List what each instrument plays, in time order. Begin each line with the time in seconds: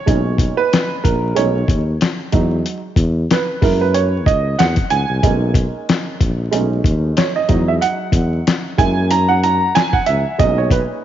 Already playing: upright piano C#5
0.06 tuba B1, upright piano A#2 G#3 C#4 D#4, kick, closed hi-hat
0.38 kick, closed hi-hat
0.57 upright piano B4
0.73 snare, closed hi-hat
1.04 tuba A#1, upright piano A#4, kick, closed hi-hat
1.35 tuba B1, upright piano G#3 A3 C#4 D#4 C#5, closed hi-hat
1.68 tuba D#2, kick, closed hi-hat
2.01 snare, closed hi-hat
2.32 tuba E2, upright piano F#3 G#3 D#4, kick, closed hi-hat
2.66 closed hi-hat
2.96 tuba E2, kick, closed hi-hat
3.31 upright piano B4, snare, closed hi-hat
3.61 tuba F#2, upright piano G#3 A#3 E4 A#4, kick, open hi-hat
3.81 upright piano B4
3.94 upright piano C#5, closed hi-hat
4.26 tuba C#2, upright piano D#5, kick, closed hi-hat
4.59 tuba E2, upright piano F#5, snare, closed hi-hat
4.76 kick, closed hi-hat
4.90 tuba C#2, upright piano G#5, closed hi-hat
5.09 tuba C2
5.23 tuba B1, upright piano G#3 A#3 C#4 D#4, kick, closed hi-hat
5.54 kick, closed hi-hat
5.89 snare, closed hi-hat
6.21 tuba A#1, kick, closed hi-hat
6.51 tuba B1, upright piano G#3 A3 C#4 D#4, closed hi-hat
6.84 tuba D#2, kick, closed hi-hat
7.17 upright piano C#5, snare, closed hi-hat
7.36 upright piano D#5
7.48 tuba E2, upright piano F#3 G#3 D#4, kick, closed hi-hat
7.68 upright piano E5
7.81 upright piano F#5, closed hi-hat
8.12 tuba E2, kick, closed hi-hat
8.47 snare, closed hi-hat
8.78 tuba F#2, upright piano G#3 A#3 E4 G#5, kick, closed hi-hat
9.11 upright piano A#5, closed hi-hat
9.29 upright piano F#5
9.43 upright piano A#5, closed hi-hat
9.75 upright piano G#5, snare, closed hi-hat
9.93 upright piano F#5, kick
10.06 tuba C#2, upright piano E5, closed hi-hat
10.38 tuba B1, upright piano A#2 G#3 C#4 D#4 D#5, kick, closed hi-hat
10.58 upright piano C#5
10.71 upright piano B4, kick, closed hi-hat